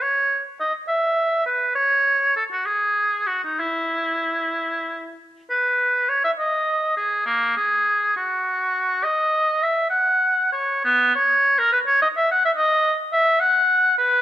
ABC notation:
X:1
M:6/8
L:1/16
Q:3/8=68
K:E
V:1 name="Oboe"
c4 d2 e4 B2 | c4 A F G4 F D | E8- E2 z2 | [K:D#phr] B4 c e d4 G2 |
A,2 G4 F6 | d4 e2 f4 c2 | B,2 c3 A B c d e f e | [K:F#dor] d4 e2 f4 B2 |]